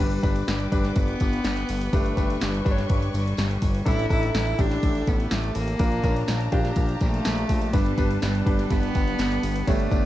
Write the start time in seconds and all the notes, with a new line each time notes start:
0.00 G1 G2 G3 D4 G4 B4 G5 D6, kick, tambourine
0.12 ride
0.23 G1 D4 G4 B4, kick, ride, tambourine
0.36 ride
0.47 G1 G3, snare, ride, tambourine
0.60 ride
0.72 G1 D4 G4 B4, kick, ride, tambourine
0.84 snare, ride
0.96 G1 B3, kick, ride, tambourine
1.08 ride
1.20 G1, kick, ride, tambourine
1.33 ride
1.44 G1, snare, ride, tambourine
1.57 ride
1.69 G1, open hi-hat, ride, tambourine
1.81 ride
1.92 G1 G2 A3 D4 G4 B4 C#6, kick, ride, tambourine
2.06 ride
2.17 G1 D4 G4 B4, kick, ride, tambourine
2.30 ride
2.41 G1 G3, snare, ride, tambourine
2.54 ride
2.65 G1 D4 G4 B4, kick, ride, tambourine
2.71 C#5
2.78 snare, ride
2.89 G1, kick, ride
3.02 ride
3.14 G1 G3, ride, tambourine
3.27 ride
3.37 G1, snare, ride, tambourine
3.51 ride
3.62 G1, kick, open hi-hat, ride, tambourine
3.74 ride
3.85 A1 A2 D4 E4 A4 E5 A5, kick, ride, tambourine
3.99 ride
4.09 A1 D4 D#4 E4 A4, kick, ride, tambourine
4.16 E4
4.23 ride
4.34 A1 E4, snare, ride, tambourine
4.47 ride
4.58 A1 D4 E4 G4, kick, ride, tambourine
4.71 snare, ride
4.83 A1, kick, ride, tambourine
4.95 ride
5.07 A1 B3, kick, ride, tambourine
5.20 ride
5.31 A1 A3, snare, ride, tambourine
5.43 ride
5.55 A1 A#3, open hi-hat, ride, tambourine
5.68 ride
5.79 A#1 A#2 D4 F4 A#4 F5 A#5, kick, ride, tambourine
5.92 ride
6.03 A#1 C#4 F4 A#4, kick, ride, tambourine
6.09 D4
6.16 ride
6.28 A#1, snare, ride, tambourine
6.40 ride
6.52 A#1 D4 F4 G4, kick, ride
6.65 snare, ride
6.76 A#1, kick, ride, tambourine
6.89 ride
7.01 A#1 A3, kick, ride, tambourine
7.14 ride
7.25 A#1, snare, ride, tambourine
7.38 ride
7.49 A#1, kick, open hi-hat, ride, tambourine
7.61 ride
7.73 G1 G2 D3 G3 B3 D4 G4 B4 G5, kick, ride, tambourine
7.86 ride
7.97 G1 D4 G4 B4, kick, ride, tambourine
8.11 ride
8.22 G1 G3 B3 D4 G4, snare, ride, tambourine
8.35 ride
8.46 G1 B3 D4 G4 B4, kick, ride
8.50 G3
8.59 snare, ride
8.70 G1 G2 D3 G3 B3 D4 G4, kick, ride, tambourine
8.83 ride
8.95 G1, kick, ride, tambourine
9.07 ride
9.19 G1 G3 B3 D4 G4, snare, ride, tambourine
9.32 ride
9.43 G1 G3 B3 D4 G4, open hi-hat, ride, tambourine
9.56 ride
9.67 G1 G2 D3 G3 A3 B3 D4 G4 C#5 F#5, kick, ride, tambourine
9.80 ride
9.91 G1 D4 G4 D5, kick, ride, tambourine